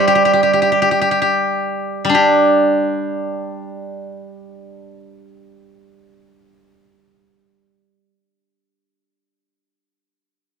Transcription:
0, 0, Header, 1, 2, 480
1, 0, Start_track
1, 0, Tempo, 1107011
1, 369, Tempo, 1315789
1, 848, Time_signature, 2, 2, 24, 8
1, 849, Tempo, 1411765
1, 1329, Tempo, 1354402
1, 2289, Tempo, 1401869
1, 3766, End_track
2, 0, Start_track
2, 0, Title_t, "Guzheng"
2, 0, Program_c, 0, 107
2, 0, Note_on_c, 0, 55, 56
2, 0, Note_on_c, 0, 72, 73
2, 0, Note_on_c, 0, 74, 86
2, 0, Note_on_c, 0, 76, 90
2, 0, Note_on_c, 0, 79, 67
2, 33, Note_on_c, 0, 67, 51
2, 64, Note_off_c, 0, 67, 0
2, 66, Note_on_c, 0, 67, 41
2, 107, Note_off_c, 0, 67, 0
2, 109, Note_on_c, 0, 67, 45
2, 131, Note_off_c, 0, 79, 0
2, 143, Note_off_c, 0, 67, 0
2, 145, Note_on_c, 0, 67, 42
2, 184, Note_off_c, 0, 67, 0
2, 186, Note_on_c, 0, 67, 45
2, 230, Note_off_c, 0, 67, 0
2, 231, Note_on_c, 0, 67, 38
2, 236, Note_off_c, 0, 76, 0
2, 266, Note_off_c, 0, 67, 0
2, 268, Note_on_c, 0, 67, 43
2, 310, Note_off_c, 0, 67, 0
2, 311, Note_on_c, 0, 67, 40
2, 353, Note_off_c, 0, 67, 0
2, 355, Note_on_c, 0, 67, 46
2, 390, Note_off_c, 0, 67, 0
2, 391, Note_on_c, 0, 67, 39
2, 427, Note_off_c, 0, 67, 0
2, 429, Note_on_c, 0, 67, 43
2, 462, Note_off_c, 0, 67, 0
2, 464, Note_on_c, 0, 67, 37
2, 466, Note_off_c, 0, 74, 0
2, 501, Note_off_c, 0, 67, 0
2, 502, Note_on_c, 0, 67, 45
2, 601, Note_off_c, 0, 72, 0
2, 800, Note_off_c, 0, 55, 0
2, 805, Note_on_c, 0, 55, 46
2, 823, Note_on_c, 0, 62, 46
2, 840, Note_off_c, 0, 67, 0
2, 841, Note_on_c, 0, 67, 47
2, 2241, Note_off_c, 0, 67, 0
2, 2483, Note_off_c, 0, 62, 0
2, 2913, Note_off_c, 0, 55, 0
2, 3766, End_track
0, 0, End_of_file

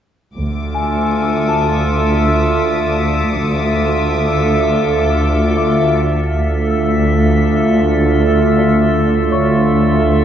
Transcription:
0, 0, Header, 1, 7, 480
1, 0, Start_track
1, 0, Tempo, 742574
1, 232, Time_signature, 4, 2, 24, 8
1, 3109, Tempo, 758534
1, 5029, Tempo, 743494
1, 6579, End_track
2, 0, Start_track
2, 0, Title_t, "Violin section"
2, 0, Program_c, 0, 48
2, 238, Note_on_c, 0, 86, 20
2, 704, Note_on_c, 0, 87, 23
2, 3044, Note_off_c, 0, 86, 0
2, 3044, Note_off_c, 0, 87, 0
2, 3044, Note_on_c, 0, 86, 23
2, 3801, Note_off_c, 0, 86, 0
2, 6579, End_track
3, 0, Start_track
3, 0, Title_t, "Celesta"
3, 0, Program_c, 1, 8
3, 355, Control_c, 1, 64, 127
3, 482, Note_on_c, 1, 80, 29
3, 961, Note_on_c, 1, 81, 28
3, 1891, Note_off_c, 1, 80, 0
3, 2369, Note_off_c, 1, 81, 0
3, 3591, Note_on_c, 1, 76, 23
3, 3592, Note_on_c, 1, 86, 35
3, 4052, Note_off_c, 1, 76, 0
3, 4053, Note_off_c, 1, 86, 0
3, 4086, Control_c, 1, 64, 0
3, 4203, Control_c, 1, 64, 127
3, 4310, Note_on_c, 1, 88, 27
3, 5506, Note_on_c, 1, 74, 23
3, 5721, Note_off_c, 1, 88, 0
3, 5979, Note_on_c, 1, 73, 23
3, 5984, Note_on_c, 1, 85, 28
3, 6579, Note_off_c, 1, 73, 0
3, 6579, Note_off_c, 1, 74, 0
3, 6579, Note_off_c, 1, 85, 0
3, 6579, End_track
4, 0, Start_track
4, 0, Title_t, "Synth texture"
4, 0, Program_c, 2, 99
4, 237, Note_on_c, 2, 65, 46
4, 239, Note_on_c, 2, 76, 42
4, 240, Note_on_c, 2, 69, 45
4, 2129, Note_off_c, 2, 65, 0
4, 2129, Note_off_c, 2, 76, 0
4, 2130, Note_off_c, 2, 69, 0
4, 2149, Note_on_c, 2, 69, 47
4, 2151, Note_on_c, 2, 65, 47
4, 2151, Note_on_c, 2, 76, 48
4, 4048, Note_off_c, 2, 69, 0
4, 4050, Note_off_c, 2, 65, 0
4, 4050, Note_off_c, 2, 76, 0
4, 4073, Note_on_c, 2, 76, 43
4, 4074, Note_on_c, 2, 69, 47
4, 4077, Note_on_c, 2, 65, 47
4, 5962, Note_off_c, 2, 76, 0
4, 5963, Note_off_c, 2, 69, 0
4, 5965, Note_off_c, 2, 65, 0
4, 5999, Note_on_c, 2, 69, 49
4, 5999, Note_on_c, 2, 76, 51
4, 6001, Note_on_c, 2, 65, 49
4, 6579, Note_off_c, 2, 65, 0
4, 6579, Note_off_c, 2, 69, 0
4, 6579, Note_off_c, 2, 76, 0
4, 6579, End_track
5, 0, Start_track
5, 0, Title_t, "Cello section"
5, 0, Program_c, 3, 48
5, 233, Note_on_c, 3, 38, 30
5, 2127, Note_off_c, 3, 38, 0
5, 2150, Note_on_c, 3, 38, 38
5, 3920, Note_off_c, 3, 38, 0
5, 4073, Note_on_c, 3, 38, 31
5, 5962, Note_off_c, 3, 38, 0
5, 5989, Note_on_c, 3, 38, 40
5, 6579, Note_off_c, 3, 38, 0
5, 6579, End_track
6, 0, Start_track
6, 0, Title_t, "Double bass section"
6, 0, Program_c, 4, 48
6, 232, Note_on_c, 4, 38, 27
6, 690, Note_off_c, 4, 38, 0
6, 2153, Note_on_c, 4, 38, 33
6, 2607, Note_off_c, 4, 38, 0
6, 4077, Note_on_c, 4, 38, 32
6, 5965, Note_off_c, 4, 38, 0
6, 5986, Note_on_c, 4, 38, 40
6, 6579, Note_off_c, 4, 38, 0
6, 6579, End_track
7, 0, Start_track
7, 0, Title_t, "Synth drone"
7, 0, Program_c, 5, 95
7, 235, Note_on_c, 5, 38, 51
7, 2128, Note_off_c, 5, 38, 0
7, 2154, Note_on_c, 5, 38, 59
7, 4051, Note_off_c, 5, 38, 0
7, 4074, Note_on_c, 5, 38, 55
7, 5963, Note_off_c, 5, 38, 0
7, 5997, Note_on_c, 5, 38, 58
7, 6579, Note_off_c, 5, 38, 0
7, 6579, End_track
0, 0, End_of_file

